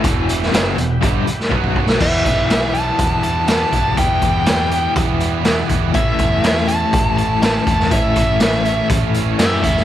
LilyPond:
<<
  \new Staff \with { instrumentName = "Lead electric guitar" } { \time 4/4 \key e \minor \tempo 4 = 122 r1 | \key e \dorian e''4. a''4 a''8 a''4 | g''2 r2 | e''4. a''4 a''8 a''4 |
e''2 r4 <g' e''>8 <g' e''>8 | }
  \new Staff \with { instrumentName = "Tonewheel organ" } { \time 4/4 \key e \minor << { r1 | \key e \dorian <a b c' d' e' f' g' a' b' c'' d''>8 r2. r8 | r1 | r1 |
r1 | } \\ { <g b e' g'>2. <fis b fis' b'>4 | <b e' g' b'>1~ | <b e' g' b'>1 | <cis' e' a' cis''>1~ |
<cis' e' a' cis''>1 | } >> }
  \new Staff \with { instrumentName = "Distorted electric guitar" } { \time 4/4 \key e \minor <e, b, e>4 <fis, cis fis>8 <e, b,>8 <g, d g>8 r8 <b, fis b>4 | \key e \dorian <e g b e'>8 <g b e'>8 <e g b e'>8 <g b e'>4. <e g b e'>8 <g b e'>8 | <e g b e'>8 <g b e'>8 <e g b e'>8 <g b e'>4. <e g b e'>8 <g b e'>8 | <a, e a cis' e'>8 <a cis' e'>8 <a, e a cis' e'>8 <a cis' e'>4. <e a cis' e'>8 <a cis' e'>8 |
<a, e a cis' e'>8 <a cis' e'>8 <a, e a cis' e'>8 <a cis' e'>4. <e a cis' e'>8 <a cis' e'>8 | }
  \new Staff \with { instrumentName = "Overdriven electric guitar" } { \clef bass \time 4/4 \key e \minor <e, b, e>4 <fis, cis fis>8 <e, b,>8 <g, d g>8 r8 <b, fis b>4 | \key e \dorian <e, b, e>1 | <e, b, e>1 | <a, e a>1 |
<a, e a>1 | }
  \new Staff \with { instrumentName = "Picked electric bass" } { \clef bass \time 4/4 \key e \minor e,,4 fis,,8 e,,8 g,,8 r8 b,,4 | \key e \dorian e,8 b,,4. e,4. b,,8 | e,8 e,4. e,4. e,8 | a,,8 e,4. a,,4. e,8 |
a,,8 a,,4. a,,4 fis,8 e,8 | }
  \new DrumStaff \with { instrumentName = "Drums" } \drummode { \time 4/4 <hh bd>8 hh16 sn16 <hh sn>8 hh8 <hh bd>8 hh16 sn16 bd16 bd16 bd16 sn16 | <cymc bd>8 <hh bd>8 <hh sn>8 hh8 <hh bd>8 hh8 <hh sn>8 <hh bd>8 | <hh bd>8 <hh bd>8 <hh sn>8 hh8 <hh bd>8 hh8 <hh sn>8 <hh bd>8 | <hh bd>8 <hh bd>8 <hh sn>16 sn16 hh8 <hh bd>8 hh8 <hh sn>8 <hh bd>16 sn16 |
<hh bd>8 <hh bd>8 <hh sn>8 hh8 <hh bd>8 hh8 <hh sn>8 <hh bd>16 sn16 | }
>>